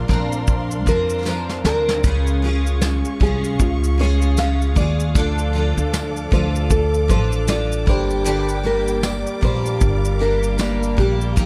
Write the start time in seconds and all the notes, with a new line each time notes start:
Already playing: A#4 D5 F5 C6
0.08 A#1 F3 C4 D4 A#4, kick
0.32 shaker
0.47 kick, shaker
0.71 shaker
0.86 F2 F3 C4 D4 A#4, kick, shaker
1.10 shaker
1.25 F3 C4 D4 A#4 C5, snare, tambourine
1.49 snare
1.64 D2 F3 C4 D4 A#4, snare
1.89 snare
2.04 C#2 C#3 G#3 C#4 F4 G#4 F5 C#6, kick, shaker
2.27 shaker
2.42 G#3 C#4 F4 G#4
2.67 shaker
2.82 snare, tambourine, shaker
3.05 shaker
3.20 C2 G#3 C#4 F4 G#4, kick
3.44 shaker
3.60 C#2 F4, kick, shaker
3.84 shaker
3.98 G#3 C#4 F4 G#4 C#5
4.22 shaker
4.37 G#3 C#4 F4 G#4 F5, snare, tambourine, shaker
4.62 shaker
4.75 D#2 G#3 F4 G#4 D5, kick, shaker
5.00 shaker
5.15 D2 D3 F3 D4 F4 A4 D5 D6, kick, shaker
5.38 shaker
5.53 F3 D4 F4 A4
5.77 D2, shaker
5.93 snare, tambourine, shaker
6.17 shaker
6.31 D2 F3 D4 F4 A4 C5, kick
6.55 shaker
6.70 A4, kick, shaker
6.94 shaker
7.08 A1 F3 D4 F4 A4 C5, kick, shaker
7.32 shaker
7.47 F3 D4 F4 A4 D5, snare, tambourine, shaker
7.72 shaker
7.86 G1 G3 A#3 D4 G4 A#4 C5 D5 G5, kick
8.10 shaker
8.24 G2 D3 G3 A#3 D4 G4, shaker
8.49 shaker
8.63 G3 A#3 D4 G4 A#4
8.88 shaker
9.03 D5, snare, tambourine, shaker
9.27 shaker
9.41 A#1 G3 A#3 D4 G4 C5 F5, kick
9.66 shaker
9.81 G1, kick, shaker
10.05 shaker
10.19 G3 A#3 D4 G4 A#4
10.43 shaker
10.58 G3 A#3 D4 G4 D5, snare, tambourine, shaker
10.83 shaker
10.97 A#1 G3 A#3 D4 G4, kick
11.21 shaker
11.36 D#2 D#3 F3 A#3 D#4 G4 G5 D#6, kick, shaker